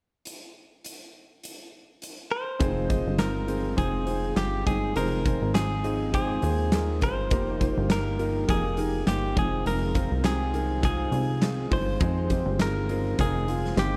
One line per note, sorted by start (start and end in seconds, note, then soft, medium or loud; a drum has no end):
0.25 closed hi-hat medium
0.84 closed hi-hat medium
1.43 closed hi-hat soft
2.02 closed hi-hat medium
2.31 3.19 C5 loud
2.59 3.03 F1 loud
2.59 2.90 F2 medium
2.59 2.90 D#3 medium
2.59 3.44 F3 medium
2.59 2.90 F3 medium
2.59 2.90 G#3 medium
2.59 2.85 C4 loud
2.59 2.89 C4 medium
2.59 2.85 D#4 medium
2.59 2.88 F4 medium
2.59 2.85 G#4 medium
2.59 2.85 C5 loud
2.59 kick loud
2.59 closed hi-hat medium
2.89 3.16 D#3 soft
2.89 3.18 G#3 soft
2.89 3.14 C4 medium
2.89 3.19 C4 medium
2.89 3.14 D#4 medium
2.89 3.19 F4 medium
2.89 3.14 G#4 medium
2.89 3.14 D#5 medium
2.89 kick medium
2.89 closed hi-hat medium
3.07 3.75 G1 medium
3.18 3.48 D#3 medium
3.18 3.48 G#3 medium
3.18 3.43 C4 medium
3.18 3.47 C4 medium
3.18 3.44 D#4 medium
3.18 3.46 F4 medium
3.18 3.44 G#4 medium
3.18 3.78 A#4 loud
3.18 3.44 C5 medium
3.18 snare loud
3.18 clap medium
3.18 closed hi-hat medium
3.47 3.76 D#3 soft
3.47 3.76 G#3 medium
3.47 3.73 C4 medium
3.47 3.77 C4 medium
3.47 3.73 D#4 medium
3.47 3.77 F4 medium
3.47 3.73 G#4 medium
3.47 3.73 C5 medium
3.47 closed hi-hat medium
3.76 4.33 F1 loud
3.76 4.07 F2 medium
3.76 4.07 D#3 medium
3.76 4.07 F3 medium
3.76 4.07 G#3 medium
3.76 4.02 C4 medium
3.76 4.06 C4 medium
3.76 4.02 D#4 medium
3.76 4.04 F4 medium
3.76 4.02 G#4 medium
3.76 4.37 G#4 medium
3.76 4.02 C5 medium
3.76 kick medium
3.76 closed hi-hat medium
4.05 4.34 D#3 soft
4.05 4.35 G#3 medium
4.05 4.32 C4 medium
4.05 4.36 C4 soft
4.05 4.32 D#4 medium
4.05 4.36 F4 medium
4.05 4.32 G#4 medium
4.05 4.32 C5 medium
4.05 closed hi-hat medium
4.35 4.64 G1 loud
4.35 4.66 D#3 medium
4.35 4.66 G#3 medium
4.35 4.61 C4 medium
4.35 4.65 C4 medium
4.35 4.61 D#4 medium
4.35 4.64 F4 medium
4.35 4.66 G4 medium
4.35 4.61 G#4 medium
4.35 4.61 C5 medium
4.35 snare loud
4.35 clap medium
4.35 closed hi-hat medium
4.65 4.94 G1 medium
4.65 4.94 D#3 soft
4.65 4.95 G#3 medium
4.65 4.91 C4 medium
4.65 4.95 C4 medium
4.65 4.91 D#4 medium
4.65 4.95 F4 medium
4.65 4.91 G#4 medium
4.65 4.94 G#4 medium
4.65 4.91 D#5 medium
4.65 kick medium
4.65 closed hi-hat medium
4.94 5.38 F1 loud
4.94 5.24 F2 medium
4.94 5.25 D#3 medium
4.94 5.25 F3 medium
4.94 5.80 F3 medium
4.94 5.25 G#3 medium
4.94 5.20 C4 medium
4.94 5.24 C4 medium
4.94 5.21 D#4 medium
4.94 5.23 F4 medium
4.94 5.21 G#4 medium
4.94 5.54 A#4 loud
4.94 5.21 C5 medium
4.94 closed hi-hat medium
5.24 5.52 D#3 soft
5.24 5.53 G#3 soft
5.24 5.55 C4 soft
5.24 5.50 C4 medium
5.24 5.50 D#4 medium
5.24 5.54 F4 soft
5.24 5.50 G#4 medium
5.24 5.50 C5 medium
5.24 kick medium
5.24 closed hi-hat medium
5.42 6.39 G#1 medium
5.53 5.83 D#3 medium
5.53 5.84 G#3 medium
5.53 5.79 C4 medium
5.53 5.83 C4 medium
5.53 5.80 D#4 medium
5.53 5.82 F4 medium
5.53 6.13 G#4 medium
5.53 5.80 G#4 medium
5.53 5.80 C5 medium
5.53 snare loud
5.53 clap medium
5.53 closed hi-hat medium
5.83 6.12 D#3 soft
5.83 6.12 G#3 medium
5.83 6.13 C4 medium
5.83 6.09 C4 medium
5.83 6.09 D#4 medium
5.83 6.13 F4 medium
5.83 6.09 G#4 medium
5.83 6.09 D#5 medium
5.83 closed hi-hat medium
6.12 6.42 F2 medium
6.12 6.43 D#3 medium
6.12 6.43 F3 medium
6.12 6.43 G#3 medium
6.12 6.38 C4 medium
6.12 6.42 C4 medium
6.12 6.38 D#4 medium
6.12 6.41 F4 medium
6.12 6.38 G#4 medium
6.12 7.03 G#4 medium
6.12 6.38 C5 loud
6.12 kick medium
6.12 closed hi-hat medium
6.42 7.03 D#2 medium
6.42 6.70 D#3 soft
6.42 6.71 G#3 soft
6.42 6.68 C4 medium
6.42 6.72 C4 medium
6.42 6.68 D#4 medium
6.42 6.72 F4 medium
6.42 6.68 G#4 medium
6.42 6.68 C5 medium
6.42 closed hi-hat medium
6.71 7.01 D#3 medium
6.71 7.02 G#3 medium
6.71 6.97 C4 medium
6.71 7.01 C4 medium
6.71 6.97 D#4 medium
6.71 7.00 F4 medium
6.71 6.97 G#4 medium
6.71 6.98 A#4 medium
6.71 snare loud
6.71 clap medium
6.71 closed hi-hat medium
7.01 7.32 G1 medium
7.01 7.32 D#3 soft
7.01 7.32 G#3 soft
7.01 7.26 C4 medium
7.01 7.31 C4 medium
7.01 7.26 D#4 medium
7.01 7.31 F4 medium
7.01 7.26 G#4 medium
7.01 7.27 A#4 medium
7.01 7.91 C5 loud
7.01 kick medium
7.01 closed hi-hat medium
7.31 7.74 F1 loud
7.31 7.60 F2 medium
7.31 8.15 F3 medium
7.31 7.61 F3 medium
7.31 7.56 A#3 medium
7.31 7.61 A#3 medium
7.31 7.56 D#4 medium
7.31 7.61 D#4 medium
7.31 7.59 F4 medium
7.31 7.56 G4 medium
7.31 7.60 G4 medium
7.31 7.56 A#4 medium
7.31 kick loud
7.31 closed hi-hat medium
7.60 7.85 A#3 medium
7.60 7.88 A#3 soft
7.60 7.85 D#4 medium
7.60 7.89 D#4 soft
7.60 7.90 F4 medium
7.60 7.85 G4 medium
7.60 7.90 G4 medium
7.60 7.85 C5 medium
7.60 kick medium
7.60 closed hi-hat medium
7.77 8.45 G1 medium
7.89 8.19 A#3 medium
7.89 8.14 A#3 medium
7.89 8.15 D#4 medium
7.89 8.20 D#4 medium
7.89 8.17 F4 medium
7.89 8.15 G4 medium
7.89 8.18 G4 medium
7.89 8.15 A#4 medium
7.89 8.50 A#4 medium
7.89 snare loud
7.89 clap medium
7.89 closed hi-hat medium
8.18 8.44 A#3 medium
8.18 8.48 A#3 soft
8.18 8.44 D#4 medium
8.18 8.48 D#4 soft
8.18 8.48 F4 medium
8.18 8.44 G4 medium
8.18 8.49 G4 medium
8.18 8.44 A#4 medium
8.18 closed hi-hat medium
8.48 9.04 F1 loud
8.48 8.78 F2 medium
8.48 8.78 F3 medium
8.48 8.73 A#3 medium
8.48 8.78 A#3 medium
8.48 8.73 D#4 medium
8.48 8.78 D#4 medium
8.48 8.76 F4 medium
8.48 8.73 G4 medium
8.48 8.77 G4 medium
8.48 9.04 G#4 medium
8.48 8.73 A#4 medium
8.48 kick medium
8.48 closed hi-hat medium
8.77 9.02 A#3 medium
8.77 9.05 A#3 soft
8.77 9.02 D#4 medium
8.77 9.06 D#4 soft
8.77 9.07 F4 medium
8.77 9.02 G4 medium
8.77 9.07 G4 medium
8.77 9.03 A#4 medium
8.77 closed hi-hat medium
9.06 9.35 G1 medium
9.06 9.36 A#3 medium
9.06 9.32 A#3 medium
9.06 9.31 D#4 medium
9.06 9.37 D#4 medium
9.06 9.35 F4 medium
9.06 9.32 G4 medium
9.06 9.38 G4 medium
9.06 9.32 C5 medium
9.06 snare loud
9.06 clap medium
9.06 closed hi-hat medium
9.35 9.64 F1 loud
9.35 10.20 C3 medium
9.35 9.65 D#3 soft
9.35 9.66 G#3 medium
9.35 9.85 C4 medium
9.35 9.66 C4 medium
9.35 9.85 D#4 medium
9.35 9.85 F4 medium
9.35 9.66 F4 medium
9.35 9.86 G#4 medium
9.35 9.67 G#4 medium
9.35 kick loud
9.35 closed hi-hat medium
9.66 10.09 F1 medium
9.66 9.96 F2 medium
9.66 9.96 D#3 medium
9.66 9.96 F3 medium
9.66 9.95 G#3 medium
9.66 9.94 C4 medium
9.66 9.93 F4 medium
9.66 10.25 A#4 medium
9.66 closed hi-hat medium
9.94 10.22 D#3 soft
9.94 10.23 G#3 soft
9.94 10.20 C4 medium
9.94 10.24 C4 soft
9.94 10.20 D#4 medium
9.94 10.24 F4 medium
9.94 10.20 F4 medium
9.94 10.20 A#4 medium
9.94 kick medium
9.94 closed hi-hat medium
10.11 11.09 C2 medium
10.23 10.54 D#3 medium
10.23 10.54 G#3 medium
10.23 10.49 C4 medium
10.23 10.53 C4 medium
10.23 10.49 D#4 medium
10.23 10.49 F4 medium
10.23 10.52 F4 medium
10.23 10.49 G4 medium
10.23 10.84 G#4 medium
10.23 snare loud
10.23 clap medium
10.23 closed hi-hat medium
10.53 10.82 D#3 soft
10.53 10.83 G#3 soft
10.53 10.79 C4 medium
10.53 10.83 C4 medium
10.53 10.79 D#4 medium
10.53 10.83 F4 medium
10.53 10.79 F4 medium
10.53 10.79 A#4 medium
10.53 closed hi-hat medium
10.82 11.13 F2 medium
10.82 11.13 D#3 medium
10.82 11.13 F3 medium
10.82 11.13 G#3 medium
10.82 11.08 C4 medium
10.82 11.12 C4 medium
10.82 11.08 D#4 medium
10.82 11.08 F4 medium
10.82 11.11 F4 medium
10.82 11.08 G#4 medium
10.82 11.73 G#4 medium
10.82 kick medium
10.82 clap medium
10.82 closed hi-hat medium
11.11 11.67 C2 medium
11.11 11.40 D#3 soft
11.11 11.41 G#3 soft
11.11 11.37 C4 medium
11.11 11.42 C4 medium
11.11 11.37 D#4 medium
11.11 11.42 F4 medium
11.11 11.37 F4 medium
11.11 11.37 G#4 medium
11.11 closed hi-hat medium
11.41 11.71 D#3 medium
11.41 11.71 G#3 medium
11.41 11.67 C4 medium
11.41 11.70 C4 medium
11.41 11.67 D#4 medium
11.41 11.67 F4 medium
11.41 11.69 F4 medium
11.41 11.67 G#4 medium
11.41 snare loud
11.41 clap medium
11.41 closed hi-hat medium
11.70 11.99 G1 medium
11.70 12.00 D#3 soft
11.70 12.00 G#3 soft
11.70 11.96 C4 medium
11.70 12.01 C4 soft
11.70 11.96 D#4 medium
11.70 12.00 F4 medium
11.70 11.96 F4 medium
11.70 11.96 G#4 medium
11.70 12.61 C5 medium
11.70 kick medium
11.70 open hi-hat medium
11.99 12.44 F1 loud
11.99 12.30 F2 medium
11.99 12.31 D#3 medium
11.99 12.85 F3 medium
11.99 12.31 F3 medium
11.99 12.25 G#3 medium
11.99 12.31 G#3 medium
11.99 12.25 C4 medium
11.99 12.30 C4 medium
11.99 12.26 D#4 medium
11.99 12.29 F4 medium
11.99 12.26 G#4 medium
11.99 kick loud
11.99 closed hi-hat medium
12.29 12.55 G#3 medium
12.29 12.60 G#3 soft
12.29 12.55 C4 medium
12.29 12.61 C4 soft
12.29 12.55 D#4 medium
12.29 12.60 F4 soft
12.29 12.55 G4 medium
12.29 kick medium
12.29 closed hi-hat medium
12.34 12.58 D#3 soft
12.46 13.15 G1 medium
12.59 12.89 D#3 medium
12.59 12.84 G#3 medium
12.59 12.90 G#3 medium
12.59 12.84 C4 medium
12.59 12.90 C4 medium
12.59 12.84 D#4 medium
12.59 12.84 G#4 medium
12.59 13.20 A#4 medium
12.59 snare loud
12.59 clap medium
12.59 closed hi-hat medium
12.63 12.89 F4 medium
12.89 13.14 G#3 medium
12.89 13.19 G#3 soft
12.89 13.14 C4 medium
12.89 13.19 C4 medium
12.89 13.14 D#4 medium
12.89 13.19 F4 medium
12.89 13.14 A#4 medium
12.89 closed hi-hat medium
12.93 13.18 D#3 soft
13.18 13.74 F1 medium
13.18 13.48 F2 medium
13.18 13.49 D#3 medium
13.18 13.49 F3 medium
13.18 13.43 G#3 medium
13.18 13.49 G#3 medium
13.18 13.43 C4 medium
13.18 13.48 C4 medium
13.18 13.44 D#4 medium
13.18 13.46 F4 medium
13.18 13.75 G#4 medium
13.18 13.43 A#4 loud
13.18 kick medium
13.18 closed hi-hat medium
13.48 13.76 D#3 soft
13.48 13.73 G#3 medium
13.48 13.78 G#3 medium
13.48 13.73 C4 medium
13.48 13.78 C4 medium
13.48 13.73 D#4 medium
13.48 13.77 F4 medium
13.48 13.73 F4 medium
13.48 closed hi-hat medium
13.65 snare soft
13.77 13.97 G1 loud
13.77 13.97 D#3 medium
13.77 13.97 G#3 medium
13.77 13.97 C4 medium
13.77 13.97 D#4 medium
13.77 13.97 F4 medium
13.77 13.97 G4 medium
13.77 snare loud
13.77 clap medium
13.77 closed hi-hat medium